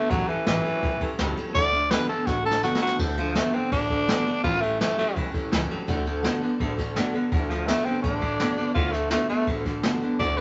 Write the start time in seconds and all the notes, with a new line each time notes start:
Already playing: A3 D4 F#4 A4
0.10 A1 A2 E3 F#3 G3 C#4 G4 A4, kick, snare, ride
0.28 A2 E3 G3 C#4 G4 A4, ride
0.46 A1 A2 E3 F#3 G3 C#4 G4 A4, snare, ride
0.65 A2 F#3 G3 C#4 G4 A4, ride
0.82 B1 A2 E3 G3 C#4 G4 A4, kick, ride
1.00 A2 E3 C#4 G4 A4, muted upright bass stroke, kick, ride
1.04 G3
1.18 C#2 A2 E3 F#3 G3 C#4 G4 A4, snare, ride
1.36 A2 F#3 C#4 G4 A4, muted upright bass stroke, ride
1.40 G3
1.54 D2 D3 A3 D4 F#4 A4 D5, kick, snare, ride
1.72 D3 A3 D4 F#4 A4, ride
1.90 D3 A3 B3 D4 F#4 A4 B4, snare, ride
2.08 D3 B3 F#4 A4, muted upright bass stroke, ride
2.27 A1 D3 A3 D4 F#4 A4, kick, snare
2.44 D3 A3 D4 F#4 A4
2.51 snare
2.62 D3 A3 B3 D4 F#4 A4, snare
2.75 snare
2.80 D3 B3 F#4 A4, muted upright bass stroke
2.87 snare
2.98 D2 D3 A3 D4 F#4 A4, kick, crash
3.16 D3 F3 A3 D4 F#4 A4, ride
3.34 D3 A3 B3 D4 F#4 A4, snare, ride
3.53 D3 B3 C4 D4 F#4 A4, muted upright bass stroke, ride
3.71 A1 D3 A3 D4 F#4 A4, kick, ride
3.90 D3 A3 D4 F#4 A4, kick, ride
4.08 D3 A3 B3 D4 F#4 A4, snare, ride
4.25 D3 B3 D4 F#4 A4, muted upright bass stroke, ride
4.43 A1 A2 E3 G3 C#4 F4 G4 A4, kick, ride
4.62 A2 E3 G3 A3 C#4 G4 A4, ride
4.79 A2 E3 F#3 G3 A3 C#4 G4 A4, snare, ride
4.97 A2 F#3 G3 A3 C#4 G4 A4, muted upright bass stroke, ride
5.15 B1 A2 E3 G3 C#4 G4 A4, kick, ride
5.33 A2 E3 G3 C#4 G4 A4, kick, ride
5.51 C#2 A2 E3 F#3 G3 C#4 G4 A4, snare, ride
5.69 A2 F#3 G3 C#4 G4 A4, muted upright bass stroke, ride
5.87 D2 D3 A3 D4 F#4 A4, kick, snare, ride
6.06 D3 A3 D4 F#4 A4, ride
6.22 D3 A3 B3 D4 F#4 A4, snare, ride
6.41 D3 B3 D4 F#4 A4, muted upright bass stroke, ride
6.59 A1 D3 A3 D4 F#4 A4, kick, ride
6.78 D3 A3 D4 F#4 A4, kick, snare, ride
6.95 D3 A3 B3 D4 F#4 A4, snare, ride
7.13 D3 B3 D4 F#4 A4, muted upright bass stroke, ride
7.32 D2 D3 A3 D4 F#4 A4, kick, ride
7.49 D3 F3 A3 F#4 A4, snare, ride
7.53 D4
7.67 D3 A3 B3 D4 F#4 A4, snare, ride
7.85 D3 B3 C4 F#4 A4, muted upright bass stroke, ride
7.89 D4
8.02 A1 D3 A3 D4 F#4, kick, ride
8.07 A4
8.21 D3 A3 F#4 A4, kick, ride
8.40 D3 A3 B3 D4 F#4 A4, snare, ride
8.57 D3 B3 D4 F#4 A4, muted upright bass stroke, ride
8.74 D2 D3 A3 D4 F4 F#4 A4, kick, ride
8.92 D3 A3 D4 F#4 A4, snare, ride
9.10 D3 A3 B3 D4 F#4 A4, snare, ride
9.28 D3 A3 B3 D4 F#4 A4, muted upright bass stroke, ride
9.47 A1 D3 A3 D4 F#4 A4, kick, ride
9.65 D3 A3 D4 F#4 A4, kick, snare, ride
9.83 D3 A3 B3 D4 F#4 A4, snare, ride
10.01 D3 B3 D4 F#4 A4, muted upright bass stroke, ride
10.19 D2 D3 A3 D4 F#4 A4 D5, kick, snare, ride
10.36 F#4 A4 B4, ride